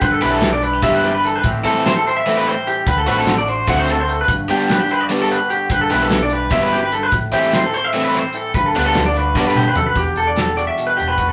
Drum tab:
HH |xxxxxxx|xxxxxxx|xxxxxxx|xxxxxxx|
SD |--o----|-oo-o--|-oo----|--o----|
T2 |-------|-------|-------|-------|
FT |-------|-------|-------|-------|
BD |o---o--|o------|o---o--|o------|

HH |xxxxxxx|xxxxxxx|xxxx---|xxxxxxx|
SD |-oo--o-|--o--o-|--o-o--|--o----|
T2 |-------|-------|-----o-|-------|
FT |-------|-------|------o|-------|
BD |o---o--|o------|o---o--|o-----o|